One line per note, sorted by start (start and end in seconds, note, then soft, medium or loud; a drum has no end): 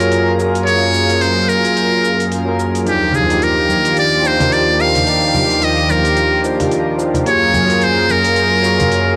0.00 2.82 F#2 medium
0.00 0.38 F#3 medium
0.00 0.39 A#3 medium
0.00 0.40 F4 medium
0.00 2.82 F4 medium
0.00 0.68 G#4 loud
0.00 2.82 G#4 medium
0.00 0.34 A#4 medium
0.00 2.82 A#4 medium
0.00 0.37 A#4 medium
0.00 2.88 C#5 medium
0.00 open hi-hat soft
0.00 shaker soft
0.12 open hi-hat soft
0.12 shaker soft
0.38 0.63 F#3 medium
0.38 0.63 A#3 medium
0.38 0.64 F4 medium
0.38 0.65 A#4 medium
0.38 shaker medium
0.55 open hi-hat soft
0.55 shaker soft
0.65 1.05 F#3 medium
0.65 1.06 A#3 medium
0.65 1.06 F4 medium
0.65 1.07 G#4 medium
0.65 1.23 C#5 loud
0.65 open hi-hat soft
0.65 shaker soft
0.94 shaker medium
1.06 2.00 F#3 medium
1.06 2.01 A#3 medium
1.06 open hi-hat soft
1.06 shaker soft
1.10 2.02 F4 medium
1.10 2.03 G#4 medium
1.21 1.50 C5 medium
1.21 open hi-hat soft
1.21 shaker soft
1.49 2.31 A#4 medium
1.49 shaker medium
1.65 open hi-hat soft
1.65 shaker soft
1.77 open hi-hat soft
1.77 shaker soft
2.05 shaker medium
2.20 open hi-hat soft
2.20 shaker soft
2.32 open hi-hat soft
2.32 shaker soft
2.45 2.82 F#3 medium
2.45 2.83 A#3 medium
2.45 2.83 F4 medium
2.45 2.84 A#4 medium
2.60 shaker medium
2.75 open hi-hat soft
2.75 shaker soft
2.85 7.22 D#2 medium
2.85 3.25 F3 medium
2.85 3.26 D4 medium
2.85 3.26 D#4 medium
2.85 7.22 F4 medium
2.85 7.22 G4 medium
2.85 3.17 G4 medium
2.85 3.27 G4 medium
2.85 open hi-hat soft
2.85 shaker soft
3.13 3.45 G#4 medium
3.13 high conga medium
3.13 low conga medium
3.13 shaker medium
3.26 4.20 F3 medium
3.26 4.21 D4 medium
3.30 4.22 D#4 medium
3.30 4.23 G4 medium
3.30 open hi-hat soft
3.30 shaker soft
3.42 3.97 A#4 medium
3.42 open hi-hat soft
3.42 shaker soft
3.69 high conga medium
3.69 shaker medium
3.85 open hi-hat soft
3.85 shaker soft
3.97 4.28 D5 medium
3.97 open hi-hat soft
3.97 shaker soft
4.22 4.35 F3 medium
4.22 4.36 D4 medium
4.22 4.36 D#4 medium
4.22 4.37 C5 medium
4.22 shaker medium
4.27 4.54 C5 medium
4.39 4.76 F3 medium
4.39 4.76 D4 medium
4.39 4.77 D#4 medium
4.39 4.77 A#4 medium
4.39 open hi-hat soft
4.39 low conga medium
4.39 shaker soft
4.52 4.82 D5 medium
4.52 open hi-hat soft
4.52 shaker soft
4.77 5.03 F3 medium
4.77 5.03 D4 medium
4.77 5.04 D#4 medium
4.77 5.04 A#4 medium
4.77 5.66 F5 loud
4.77 shaker medium
4.95 open hi-hat soft
4.95 low conga medium
4.95 shaker soft
5.06 5.46 F3 medium
5.06 5.46 D4 medium
5.06 5.47 D#4 medium
5.06 5.47 G4 medium
5.06 open hi-hat soft
5.06 shaker soft
5.35 high conga medium
5.35 low conga medium
5.35 shaker medium
5.47 6.40 F3 medium
5.47 6.41 D4 medium
5.47 open hi-hat soft
5.47 shaker soft
5.51 6.42 D#4 medium
5.51 6.43 G4 medium
5.62 5.92 D#5 medium
5.62 open hi-hat soft
5.62 shaker soft
5.90 6.45 A#4 medium
5.90 high conga medium
5.90 shaker medium
6.05 open hi-hat soft
6.05 shaker soft
6.17 open hi-hat soft
6.17 shaker soft
6.43 6.56 F3 medium
6.43 6.56 D4 medium
6.43 6.57 D#4 medium
6.43 6.57 C5 loud
6.43 shaker medium
6.59 6.96 F3 medium
6.59 6.96 D4 medium
6.59 6.97 D#4 medium
6.59 6.97 A#4 medium
6.59 open hi-hat soft
6.59 low conga medium
6.59 shaker soft
6.71 open hi-hat soft
6.71 shaker soft
6.98 7.23 F3 medium
6.98 7.24 D4 medium
6.98 7.25 D#4 medium
6.98 7.25 A#4 medium
6.98 shaker medium
7.14 open hi-hat soft
7.14 low conga medium
7.14 shaker soft
7.25 9.16 F#2 medium
7.25 7.65 F#3 medium
7.25 7.66 A#3 medium
7.25 9.16 F4 medium
7.25 7.67 F4 medium
7.25 9.16 G#4 medium
7.25 7.67 G#4 loud
7.25 9.16 A#4 medium
7.25 7.85 C#5 loud
7.25 open hi-hat soft
7.25 shaker soft
7.54 high conga medium
7.54 low conga medium
7.54 shaker medium
7.66 8.60 F#3 medium
7.66 8.61 A#3 medium
7.66 open hi-hat soft
7.70 8.62 F4 medium
7.70 8.63 G#4 medium
7.70 shaker soft
7.81 8.12 C5 medium
7.81 open hi-hat soft
7.81 shaker soft
8.09 9.16 A#4 medium
8.09 high conga medium
8.09 shaker medium
8.24 open hi-hat medium
8.24 shaker soft
8.36 open hi-hat soft
8.36 shaker soft
8.62 8.75 F#3 medium
8.62 8.76 A#3 medium
8.62 8.77 F4 medium
8.62 8.77 C#5 loud
8.62 shaker medium
8.77 9.15 F#3 medium
8.77 9.15 A#3 medium
8.77 9.16 F4 medium
8.77 9.16 A#4 medium
8.77 open hi-hat soft
8.77 low conga medium
8.77 shaker soft
8.92 open hi-hat soft
8.92 shaker soft